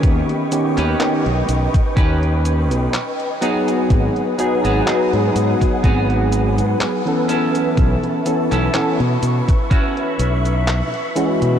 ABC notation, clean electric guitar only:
X:1
M:4/4
L:1/16
Q:"Swing 16ths" 1/4=62
K:Bmix
V:1 name="Clean electric guitar"
[C=GB]2 z [CGB]2 z3 [CGB]4 z2 [B,F^G]2- | [B,FG]2 z [B,FG]2 z3 [B,FG]4 z2 [CEA]2- | [CEA]2 z [CEA]2 z3 [CEF]4 z4 |]